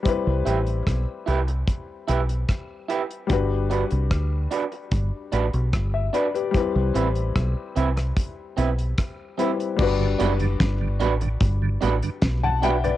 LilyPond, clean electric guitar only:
\new Staff \with { instrumentName = "Clean electric guitar" } { \time 4/4 \key g \major \tempo 4 = 74 r8 <e' g' b'>8 r8 <e' g' b'>8 r8 <e' g' b'>8 r8 <e' g' b'>8 | r8 <d' fis' b'>8 r8 <d' fis' b'>8 r8 <d' fis' b'>8 r8 <d' fis' b'>8 | r8 <c' e' b'>8 r8 <c' e' b'>8 r8 <c' e' b'>8 r8 <c' e' b'>8 | r8 <d' fis' b'>8 r8 <d' fis' b'>8 r8 <d' fis' b'>8 r8 <d' fis' b'>8 | }